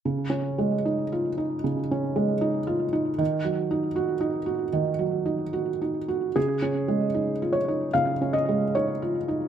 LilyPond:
\new Staff \with { instrumentName = "Felt piano" } { \time 4/4 \key des \mixolydian \tempo 4 = 76 << { r1 | r1 | aes'4. des''8 f''8 ees''8 des''4 | } \\ { \tuplet 3/2 { des8 des'8 aes8 ees'8 f'8 ees'8 des8 des'8 aes8 ees'8 f'8 ees'8 } | \tuplet 3/2 { ees8 ges8 ees'8 ges'8 ees'8 ges'8 ees8 ges8 ees'8 ges'8 ees'8 ges'8 } | \tuplet 3/2 { des8 des'8 aes8 ees'8 f'8 ees'8 des8 des'8 aes8 ees'8 f'8 ees'8 } | } >> }